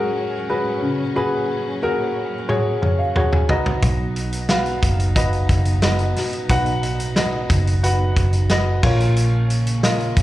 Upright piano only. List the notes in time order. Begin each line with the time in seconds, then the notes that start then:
Already playing: C#3 F#4 G#4 A#4 C#5 G#5
0.50 F#4 G#4 B4
0.82 C#3
1.16 F#4 G#4 B4
1.83 F#4 G#4 A#4
2.49 F#4 G#4 C#5
2.82 C#5
2.99 F5
3.16 F#4 G#4 C#5 F#5
3.33 G#5
3.50 B2 F#4 B4 D#5 A#5
4.49 F#4 B4 F5
5.16 F#4 B4 D#5
5.83 F#4 B4 D#5
6.16 B2
6.50 F#4 B4 F#5
7.17 F#4 B4 D#5
7.83 F#4 B4 F#5
8.50 F#4 B4 D#5
8.83 A#2 F4 A#4 C#5
9.84 F4 A#4 D#5